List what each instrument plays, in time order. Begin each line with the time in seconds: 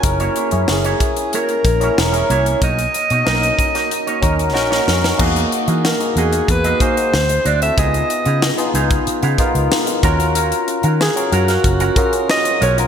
0.03 fingered electric bass F#1, tine electric piano C#4 E4 G#4 A#4, muted clean electric guitar stroke, kick, closed hi-hat
0.20 clean electric guitar A#3 E4 F#4 C#5, closed hi-hat
0.36 clean electric guitar A#3 E4 F#4 C#5, closed hi-hat
0.51 fingered electric bass F#2, tine electric piano C#4 E4 G#4 C#5, muted clean electric guitar stroke, closed hi-hat
0.68 fingered electric bass F#1, alto saxophone G#4, muted clean electric guitar stroke, snare
0.85 clean electric guitar A#3 E4 F#4 C#5, closed hi-hat
1.00 muted clean electric guitar stroke, kick, closed hi-hat
1.17 muted clean electric guitar stroke, closed hi-hat
1.33 clean electric guitar A#3 E4 F#4 C#5, alto saxophone A#4, closed hi-hat
1.49 muted clean electric guitar stroke, closed hi-hat
1.65 fingered electric bass A#1, muted clean electric guitar stroke, kick, closed hi-hat
1.80 clean electric guitar A#3 E4 F#4 C#5, tine electric piano C#4 E4 G#4 A#4, closed hi-hat
1.98 fingered electric bass E1, alto saxophone C#5, muted clean electric guitar stroke, snare
2.12 tine electric piano C#4 E4 G#4 A#4, muted clean electric guitar stroke, closed hi-hat
2.30 fingered electric bass C2, clean electric guitar A#3 E4 F#4 C#5, closed hi-hat
2.46 muted clean electric guitar stroke, closed hi-hat
2.62 fingered electric bass B1, clean electric guitar A#3 D#4 F#4 C#5, alto saxophone D#5, kick, closed hi-hat
2.79 muted clean electric guitar stroke, closed hi-hat
2.94 muted clean electric guitar stroke, closed hi-hat
3.10 fingered electric bass B2, clean electric guitar A#3 D#4 F#4 C#5, closed hi-hat
3.24 fingered electric bass B1, clean electric guitar A#3 D#4 F#4 D#5, tine electric piano C#4 D#4 F#4 A#4, snare
3.42 muted clean electric guitar stroke, closed hi-hat
3.58 muted clean electric guitar stroke, kick, closed hi-hat
3.75 clean electric guitar A#3 D#4 F#4 C#5, snare, closed hi-hat
3.91 muted clean electric guitar stroke, closed hi-hat
4.07 clean electric guitar A#3 D#4 F#4 C#5, closed hi-hat
4.21 fingered electric bass D#2, clean electric guitar A#3 D#4 F#4 C#5, tine electric piano C#4 D#4 F#4 A#4, kick, closed hi-hat
4.39 muted clean electric guitar stroke, closed hi-hat
4.53 fingered electric bass A#1, tine electric piano C#4 D#4 F#4 A#4, muted clean electric guitar stroke, snare
4.70 clean electric guitar A#3 D#4 F#4 C#5, snare
4.87 fingered electric bass F2, muted clean electric guitar stroke, snare
5.03 muted clean electric guitar stroke, snare
5.18 fingered electric bass E2, tine electric piano A#3 D#4 F#4 G#4, clean electric guitar A#3 F#4 G#4 D#5, kick, crash
5.36 closed hi-hat
5.51 muted clean electric guitar stroke, closed hi-hat
5.68 fingered electric bass E3, clean electric guitar A#3 F#4 G#4 D#5, closed hi-hat
5.84 alto saxophone A#4, muted clean electric guitar stroke, snare
5.99 tine electric piano A#3 D#4 F#4 G#4, muted clean electric guitar stroke, closed hi-hat
6.16 fingered electric bass E2, clean electric guitar A#3 F#4 G#4 D#5, alto saxophone G#4, closed hi-hat
6.32 clean electric guitar A#3 F#4 G#4 D#5, closed hi-hat
6.48 fingered electric bass E2, alto saxophone B4, muted clean electric guitar stroke, kick, closed hi-hat
6.64 clean electric guitar A#3 F#4 G#4 D#5, closed hi-hat
6.80 tine electric piano A#3 D#4 F#4 G#4, clean electric guitar A#3 F#4 G#4 D#5, alto saxophone C5, kick, closed hi-hat
6.97 muted clean electric guitar stroke, closed hi-hat
7.14 fingered electric bass D2, muted clean electric guitar stroke, snare
7.29 muted clean electric guitar stroke, closed hi-hat
7.45 fingered electric bass D2, clean electric guitar D4 F#4 C5 E5, alto saxophone D5, closed hi-hat
7.61 tine electric piano C4 E4 F#4 A4, alto saxophone E5, muted clean electric guitar stroke, closed hi-hat
7.77 fingered electric bass C#2, tine electric piano B3 D#4 F4 G#4, clean electric guitar D#4 G#4 B4 G#5, alto saxophone D#5, kick, closed hi-hat
7.94 closed hi-hat
8.09 muted clean electric guitar stroke, closed hi-hat
8.25 fingered electric bass C#3, clean electric guitar D#4 G#4 B4 F5, closed hi-hat
8.41 muted clean electric guitar stroke, snare
8.57 tine electric piano B3 D#4 F4 G#4, muted clean electric guitar stroke, closed hi-hat
8.74 fingered electric bass C#2, clean electric guitar D#4 G#4 B4 F5, closed hi-hat
8.90 clean electric guitar D#4 G#4 B4 F5, kick, closed hi-hat
9.07 muted fingered electric bass stroke, muted clean electric guitar stroke, closed hi-hat
9.23 fingered electric bass C#3, clean electric guitar D#4 G#4 B4 F5, closed hi-hat
9.38 tine electric piano B3 D#4 F4 A#4, clean electric guitar D#4 G#4 B4 F5, kick, closed hi-hat
9.55 fingered electric bass C#2, muted clean electric guitar stroke, closed hi-hat
9.71 muted clean electric guitar stroke, snare
9.87 muted clean electric guitar stroke, closed hi-hat
10.03 fingered electric bass D#2, tine electric piano C#4 F4 F#4 A#4, clean electric guitar C#4 F#4 A#4 F5, kick, closed hi-hat
10.19 clean electric guitar C#4 F#4 A#4 F#5, closed hi-hat
10.35 clean electric guitar C#4 F#4 A#4 F5, closed hi-hat
10.52 closed hi-hat
10.68 muted clean electric guitar stroke, closed hi-hat
10.83 fingered electric bass D#3, clean electric guitar C#4 F#4 A#4 F5, closed hi-hat
11.00 alto saxophone G#4, muted clean electric guitar stroke, snare
11.16 tine electric piano C#4 F#4 A#4 F5, muted clean electric guitar stroke, closed hi-hat
11.32 fingered electric bass F#2, clean electric guitar C#4 F#4 A#4 F5, alto saxophone F#4, closed hi-hat
11.48 clean electric guitar C#4 F#4 A#4 F5, snare, closed hi-hat
11.64 fingered electric bass F#1, muted clean electric guitar stroke, kick, closed hi-hat
11.80 clean electric guitar C#4 F#4 A#4 F5, closed hi-hat
11.96 clean electric guitar C#4 F#4 A#4 F5, tine electric piano C#4 F4 F#4 G#4, alto saxophone A#4, kick, closed hi-hat
12.13 muted clean electric guitar stroke, closed hi-hat
12.29 alto saxophone D#5, muted clean electric guitar stroke, snare
12.45 muted clean electric guitar stroke, closed hi-hat
12.61 fingered electric bass B1, clean electric guitar C#4 F#4 A#4 F5, alto saxophone C#5, closed hi-hat
12.78 tine electric piano C#4 F4 F#4 A#4, muted clean electric guitar stroke, closed hi-hat